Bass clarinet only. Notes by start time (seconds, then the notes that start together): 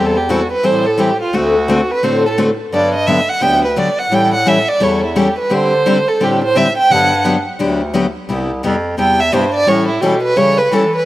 Already playing: E2
0.64 A2
1.33 D2
2.03 A2
2.72 G2
3.41 D2
4.10 A2
4.80 E2
5.51 D3
6.20 A2
6.91 G2
7.59 D2
8.29 C2
8.63 F2
8.98 E2
9.33 G2
9.67 A2
10.01 B2
10.36 C#3
10.71 E3